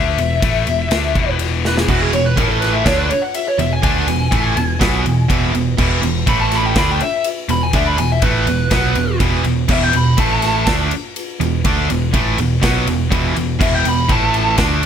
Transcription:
Already playing: picked electric bass D2, distorted electric guitar D3 A3 D4, lead electric guitar E5
0.18 picked electric bass E1, distorted electric guitar E2 B2, ride
0.42 picked electric bass A1, distorted electric guitar A2 E3 A3, kick, ride
0.67 picked electric bass E1, distorted electric guitar E2 B2, ride
0.91 picked electric bass D2, distorted electric guitar D3 A3 D4, snare, ride
1.15 picked electric bass E1, distorted electric guitar E2 B2 E3, kick, ride
1.39 ride
1.65 lead electric guitar B4, snare
1.78 lead electric guitar G#4, snare
1.88 picked electric bass E1, distorted electric guitar E2 B2 E3, lead electric guitar F#4, kick, crash
2.01 lead electric guitar G#4
2.12 picked electric bass E1, distorted electric guitar E2 B2, lead electric guitar C#5, ride
2.25 lead electric guitar B4
2.36 picked electric bass A1, distorted electric guitar A2 E3 A3, lead electric guitar A#4, kick, ride
2.49 lead electric guitar A4
2.61 lead electric guitar B4, snare, ride
2.73 lead electric guitar E5
2.86 picked electric bass D2, distorted electric guitar D3 A3 D4, lead electric guitar C#5, kick, snare, ride
2.98 lead electric guitar B4
3.10 lead electric guitar C#5, ride
3.22 lead electric guitar F#5
3.34 lead electric guitar E5, ride
3.48 lead electric guitar C#5
3.59 picked electric bass E1, distorted electric guitar E2 B2, lead electric guitar E5, ride
3.73 lead electric guitar G#5
3.83 picked electric bass D2, distorted electric guitar D3 A3 D4, lead electric guitar G#5, kick, ride
4.07 picked electric bass E1, distorted electric guitar E2 B2, ride
4.31 picked electric bass A1, distorted electric guitar A2 E3 A3, kick, ride
4.55 picked electric bass E1, distorted electric guitar E2 B2, ride
4.80 picked electric bass B1, distorted electric guitar B2 F#3 B3, kick, snare, ride
5.04 picked electric bass E1, distorted electric guitar E2 B2, ride
5.29 picked electric bass E1, distorted electric guitar E2 B2 E3, kick, ride
5.54 picked electric bass E1, distorted electric guitar E2 B2, ride
5.78 picked electric bass E1, distorted electric guitar E2 B2 E3, kick, crash
6.02 picked electric bass E1, distorted electric guitar E2 B2, ride
6.26 picked electric bass A1, distorted electric guitar A2 E3 A3, lead electric guitar B5, kick, ride
6.41 lead electric guitar A5
6.52 lead electric guitar B5, snare, ride
6.66 lead electric guitar G5
6.75 picked electric bass D2, distorted electric guitar D3 A3 D4, lead electric guitar B5, kick, snare, ride
6.91 lead electric guitar G5
7.00 lead electric guitar E5, ride
7.24 ride
7.49 picked electric bass E1, distorted electric guitar E2 B2, lead electric guitar B5, ride
7.63 lead electric guitar G#5
7.73 picked electric bass D2, distorted electric guitar D3 A3 D4, lead electric guitar E5, kick, ride
7.87 lead electric guitar B5
7.98 picked electric bass E1, distorted electric guitar E2 B2, lead electric guitar G#5, ride
8.12 lead electric guitar E5
8.22 picked electric bass A1, distorted electric guitar A2 E3 A3, lead electric guitar B4, kick, ride
8.46 picked electric bass E1, distorted electric guitar E2 B2, ride
8.70 picked electric bass B1, distorted electric guitar B2 F#3 B3, kick, snare, ride
8.95 picked electric bass E1, distorted electric guitar E2 B2, ride
9.20 picked electric bass E1, distorted electric guitar E2 B2 E3, kick, ride
9.44 picked electric bass E1, distorted electric guitar E2 B2, ride
9.68 picked electric bass E1, distorted electric guitar E2 B2 E3, lead electric guitar E5, kick, crash
9.83 lead electric guitar G5
9.93 picked electric bass E1, distorted electric guitar E2 B2, lead electric guitar B5, ride
10.17 picked electric bass A1, distorted electric guitar A2 E3 A3, lead electric guitar A5, kick, ride
10.42 snare, ride
10.66 picked electric bass D2, distorted electric guitar D3 A3 D4, kick, snare, ride
10.91 ride
11.16 ride
11.40 picked electric bass E1, distorted electric guitar E2 B2, ride
11.64 picked electric bass D2, distorted electric guitar D3 A3 D4, kick, ride
11.89 picked electric bass E1, distorted electric guitar E2 B2, ride
12.13 picked electric bass A1, distorted electric guitar A2 E3 A3, kick, ride
12.38 picked electric bass E1, distorted electric guitar E2 B2, ride
12.62 picked electric bass B1, distorted electric guitar B2 F#3 B3, kick, snare, ride
12.86 picked electric bass E1, distorted electric guitar E2 B2, ride
13.10 picked electric bass E1, distorted electric guitar E2 B2 E3, kick, ride
13.35 picked electric bass E1, distorted electric guitar E2 B2, ride
13.59 picked electric bass E1, distorted electric guitar E2 B2 E3, lead electric guitar E5, kick, crash
13.74 lead electric guitar G5
13.84 picked electric bass E1, distorted electric guitar E2 B2, ride
13.88 lead electric guitar B5
14.08 picked electric bass A1, distorted electric guitar A2 E3 A3, lead electric guitar A5, kick, ride
14.34 ride
14.58 picked electric bass D2, distorted electric guitar D3 A3 D4, kick, snare, ride
14.83 ride

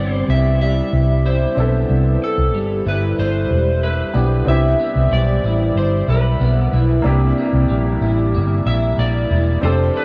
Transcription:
Already playing: fingered electric bass G1, clean electric guitar C3 G3 B3, upright piano C4 D4 E4 G4, electric slide guitar D5
0.11 electric slide guitar C5
0.28 fingered electric bass C2, clean electric guitar E4, electric slide guitar E5
0.61 clean electric guitar G3, electric slide guitar E5
0.93 fingered electric bass C2
1.26 clean electric guitar E4, electric slide guitar C5
1.55 fingered electric bass B1, clean electric guitar B3, upright piano C4 D4 E4
1.60 upright piano A4
1.90 fingered electric bass C2
2.24 electric slide guitar A4
2.37 fingered electric bass C2
2.54 fingered electric bass G1, clean electric guitar G3
2.86 fingered electric bass G1, clean electric guitar E4, electric slide guitar B4
3.18 fingered electric bass G1, clean electric guitar G3, electric slide guitar C5
3.50 fingered electric bass E1
3.83 clean electric guitar E4, electric slide guitar B4
4.14 fingered electric bass B1, upright piano B3 D4 E4 G4, clean electric guitar B3
4.45 fingered electric bass C2, upright piano C4 D4 E4, clean electric guitar E4, electric slide guitar E5
4.50 upright piano G4
4.80 clean electric guitar B3
4.95 fingered electric bass C2
5.11 fingered electric bass B1, clean electric guitar G3, electric slide guitar D5
5.44 fingered electric bass A1, clean electric guitar E4
5.75 fingered electric bass G1, electric slide guitar C5
6.08 fingered electric bass B1, clean electric guitar E4, electric slide guitar B4
6.40 fingered electric bass B1, clean electric guitar B3
6.73 fingered electric bass B1, clean electric guitar E4
7.02 fingered electric bass C2, clean electric guitar C3, upright piano A#3 D4 E4
7.07 clean electric guitar E4, upright piano G4
7.38 clean electric guitar A#3
7.53 fingered electric bass C2
7.69 fingered electric bass A#1, clean electric guitar G3
8.01 fingered electric bass A1, clean electric guitar E4
8.34 fingered electric bass G1, clean electric guitar A#3
8.66 fingered electric bass A#1, clean electric guitar E4, electric slide guitar E5
8.98 fingered electric bass A#1, clean electric guitar A#3, electric slide guitar D5
9.30 fingered electric bass E1, clean electric guitar E4
9.61 fingered electric bass F1, clean electric guitar F3 A4, upright piano C4 D4 G4, electric slide guitar C5
9.65 upright piano A4
9.96 clean electric guitar D4, electric slide guitar B4

